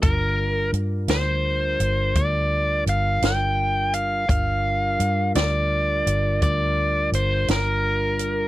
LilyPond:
<<
  \new Staff \with { instrumentName = "Lead electric guitar" } { \time 12/8 \key g \minor \tempo 4. = 56 bes'4 r8 c''4. d''4 f''8 g''4 f''8 | f''4. d''4. d''4 c''8 bes'4. | }
  \new Staff \with { instrumentName = "Tonewheel organ" } { \time 12/8 \key g \minor <g d' f' bes'>1. | <g d' f' bes'>1. | }
  \new Staff \with { instrumentName = "Fingered electric bass" } { \clef bass \time 12/8 \key g \minor g,,4 g,8 d,4 g,,8 d,4 g,,8 g,,4. | g,,4 g,8 d,4 g,,8 d,4 g,,8 g,,4. | }
  \new DrumStaff \with { instrumentName = "Drums" } \drummode { \time 12/8 <hh bd>4 hh8 <hh sn>4 hh8 <hh bd>4 hh8 <hh sn>4 hh8 | <hh bd>4 hh8 <hh sn>4 hh8 <hh bd>4 hh8 <hh sn>4 hh8 | }
>>